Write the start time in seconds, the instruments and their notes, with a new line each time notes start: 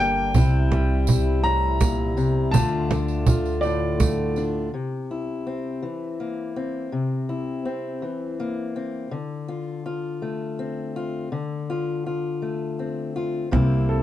Already playing: upright bass G1, steel-string acoustic guitar G2 D3 G4, harmonium G3 D4 A#4, upright piano G5
0.00 steel-string acoustic guitar A#3
0.17 cajon slap
0.34 upright bass C2, steel-string acoustic guitar C3 E4, harmonium C3 G3 E4, cajon bass, tambourine
0.72 steel-string acoustic guitar G3, cajon slap
1.07 steel-string acoustic guitar E4, cajon bass, tambourine
1.44 steel-string acoustic guitar A2, upright piano A#5, cajon slap
1.80 steel-string acoustic guitar A#2, cajon bass, cajon slap, tambourine
1.99 cajon slap
2.17 steel-string acoustic guitar C3, tambourine
2.36 cajon slap
2.51 upright bass D2, steel-string acoustic guitar D3 A3 D4 F4, harmonium D3 A3 F4, upright piano A5, cajon bass, tambourine
2.90 steel-string acoustic guitar D4, cajon slap, tambourine
3.08 tambourine
3.27 steel-string acoustic guitar F4, cajon bass, tambourine
3.45 tambourine
3.61 steel-string acoustic guitar A2, upright piano D5, tambourine
4.00 steel-string acoustic guitar A3, cajon bass, cajon slap, tambourine
4.18 cajon slap
4.36 steel-string acoustic guitar D4, tambourine
4.74 steel-string acoustic guitar C3
5.11 steel-string acoustic guitar E4
5.47 steel-string acoustic guitar C4
5.83 steel-string acoustic guitar E3
6.20 steel-string acoustic guitar A#3
6.56 steel-string acoustic guitar C4
6.92 steel-string acoustic guitar C3
7.29 steel-string acoustic guitar E4
7.65 steel-string acoustic guitar C4
8.02 steel-string acoustic guitar E3
8.40 steel-string acoustic guitar A#3
8.76 steel-string acoustic guitar C4
9.11 steel-string acoustic guitar D3
9.48 steel-string acoustic guitar F4
9.86 steel-string acoustic guitar F4
10.22 steel-string acoustic guitar A3
10.59 steel-string acoustic guitar C4
10.96 steel-string acoustic guitar F4
11.32 steel-string acoustic guitar D3
11.70 steel-string acoustic guitar F4
12.06 steel-string acoustic guitar F4
12.42 steel-string acoustic guitar A3
12.79 steel-string acoustic guitar C4
13.16 steel-string acoustic guitar F4
13.51 upright bass C2, steel-string acoustic guitar C3 A#3 C4 E4, cajon bass, cajon slap
13.72 cajon slap
13.89 upright piano A4